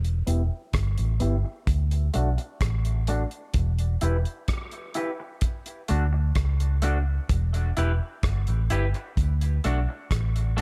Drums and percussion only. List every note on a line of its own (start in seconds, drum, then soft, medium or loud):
0.04 closed hi-hat soft
0.27 closed hi-hat medium
0.73 kick medium
0.73 cross-stick loud
0.73 closed hi-hat medium
0.98 closed hi-hat soft
1.20 closed hi-hat medium
1.67 kick loud
1.67 closed hi-hat medium
1.91 closed hi-hat soft
2.14 closed hi-hat medium
2.38 closed hi-hat soft
2.61 kick loud
2.61 cross-stick loud
2.61 closed hi-hat medium
2.85 closed hi-hat soft
3.07 closed hi-hat medium
3.31 closed hi-hat soft
3.54 kick loud
3.54 closed hi-hat medium
3.79 closed hi-hat medium
4.01 closed hi-hat medium
4.25 closed hi-hat soft
4.48 kick medium
4.48 cross-stick loud
4.48 closed hi-hat medium
4.71 closed hi-hat soft
4.94 closed hi-hat medium
5.41 kick loud
5.41 closed hi-hat loud
5.66 closed hi-hat soft
5.88 closed hi-hat medium
6.35 kick loud
6.35 cross-stick loud
6.35 closed hi-hat medium
6.60 closed hi-hat soft
6.82 closed hi-hat medium
7.29 kick loud
7.29 closed hi-hat medium
7.54 closed hi-hat soft
7.77 closed hi-hat medium
8.23 kick loud
8.23 cross-stick loud
8.23 closed hi-hat medium
8.47 closed hi-hat soft
8.70 closed hi-hat medium
8.94 closed hi-hat soft
9.17 kick loud
9.17 closed hi-hat medium
9.41 closed hi-hat soft
9.64 closed hi-hat medium
10.11 kick loud
10.11 cross-stick loud
10.11 closed hi-hat medium
10.36 closed hi-hat soft
10.58 closed hi-hat medium